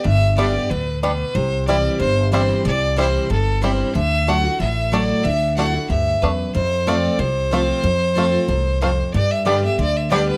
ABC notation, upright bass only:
X:1
M:4/4
L:1/8
Q:1/4=185
K:Gmix
V:1 name="Upright bass" clef=bass
G,,,4 D,,4 | C,,4 G,,,4 | C,,4 G,,,4 | D,,4 A,,,4 |
D,,4 D,,2 E,,2 | F,,4 C,,4 | F,,4 C,,4 | G,,4 D,,4 |]